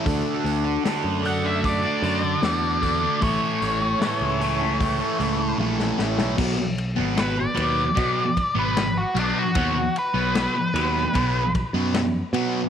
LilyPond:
<<
  \new Staff \with { instrumentName = "Lead electric guitar" } { \time 4/4 \key a \lydian \tempo 4 = 76 r4. fis''16 e''16 d''2 | cis''2. r4 | r4 b'16 d''4. b'8 fis'16 d'16 fis'16~ | fis'8 b'2 r4. | }
  \new Staff \with { instrumentName = "Harmonium" } { \time 4/4 \key a \lydian <d' fis' a' d''>1 | <cis' e' a' cis''>1 | r1 | r1 | }
  \new Staff \with { instrumentName = "Distorted electric guitar" } { \clef bass \time 4/4 \key a \lydian <d a d'>4 <d a d'>8 <d a d'>16 <a d'>8 <a d'>16 <d a d'>8 <d a d'>8 <d a d'>16 <a d'>16 | <a, e a>4 <a, e a>8 <a, e a>16 <e a>8 <e a>16 <a, e a>8 <a, e a>8 <a, e a>16 <e a>16 | <b, fis b>16 r8 <b, fis b>16 <b, fis b>16 r16 <b, fis b>16 r16 <b, fis b>16 r8 <b, fis b>16 r8 <b, fis b>16 r16 | <b, fis b>16 r8 <b, fis b>16 <b, fis b>16 r16 <b, fis b>16 r16 <b, fis b>16 r8 <b, fis b>16 r8 <b, fis b>16 r16 | }
  \new Staff \with { instrumentName = "Picked electric bass" } { \clef bass \time 4/4 \key a \lydian d,16 r16 d,8 r16 fis,4~ fis,16 fis,8 e,4 | a,,16 r16 a,,8 r16 cis,4~ cis,16 cis,8 ais,,8 a,,16 b,,16 | b,,8. gis,,8. dis,8 b,8 r16 gis,,8. b,,16 r16 | dis,8 r16 b,,8 r16 dis,8 b,,8. fis,8. b,8 | }
  \new DrumStaff \with { instrumentName = "Drums" } \drummode { \time 4/4 <hho bd>8 hho8 <hho sn>8 hho8 <hho bd>8 hho8 <hho sn>8 <hho bd>8 | <hho bd>8 hho8 <hho sn>8 hho8 <hho bd>8 hho8 tommh16 sn16 sn16 sn16 | <cymc bd>8 cymr8 <cymr sn>8 cymr8 <bd cymr>8 <bd cymr>8 <cymr sn>8 cymr8 | <bd cymr>8 cymr8 <cymr sn>8 cymr8 <bd cymr>8 <bd cymr>8 <cymr sn>8 cymr8 | }
>>